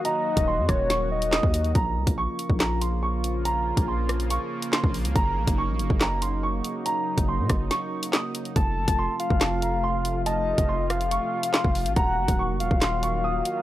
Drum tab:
HH |x--x--x-x--xx-xx|x--x--x-x-x---x-|x--x--xxx--xx-ox|x--x--x-x-x---x-|
CP |------------x---|--------x-------|------------x---|--------x-------|
SD |------r-o---o---|--------o-------|------r-----o---|--------o-------|
BD |---o--o------o--|o--o---o--------|---o---------o--|o--o---o--------|

HH |x--x--x-x--xx-xx|x--x--x-x-x---x-|x--x--xxx--xx-ox|x--x--x-x-x---x-|
CP |------------x---|--------x-------|------------x---|--------x-------|
SD |------r-o---o---|--------o-------|------r-----o---|--------o-------|
BD |---o--o---------|o--o---o--------|---o---------o--|o--o---o--------|